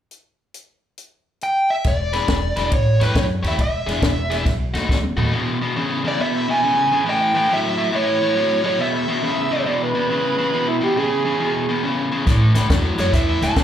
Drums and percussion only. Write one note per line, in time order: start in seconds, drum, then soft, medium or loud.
0.11 closed hi-hat soft
0.54 closed hi-hat soft
0.98 closed hi-hat medium
1.41 closed hi-hat soft
1.84 kick medium
1.84 snare soft
1.84 ride medium
2.13 snare soft
2.13 ride medium
2.28 kick medium
2.28 snare loud
2.28 ride medium
2.56 snare soft
2.56 ride medium
2.72 kick medium
2.72 ride medium
3.01 snare soft
3.01 ride medium
3.15 kick medium
3.15 snare medium
3.15 ride medium
3.44 snare soft
3.44 ride medium
3.59 kick medium
3.59 ride medium
3.89 snare soft
3.89 ride medium
4.02 kick medium
4.02 snare loud
4.02 ride medium
4.31 snare soft
4.31 ride medium
4.46 kick medium
4.46 snare soft
4.46 ride medium
4.75 snare soft
4.75 ride medium
4.89 kick medium
4.89 snare soft
5.03 mid tom soft
5.18 floor tom medium
12.27 kick medium
12.27 snare soft
12.27 closed hi-hat medium
12.55 snare soft
12.55 closed hi-hat medium
12.70 kick medium
12.70 snare loud
12.70 closed hi-hat medium
12.98 snare soft
12.98 closed hi-hat medium
13.13 kick medium
13.13 snare soft
13.13 closed hi-hat medium
13.42 snare soft
13.42 closed hi-hat medium
13.56 kick medium
13.56 snare loud
13.56 closed hi-hat medium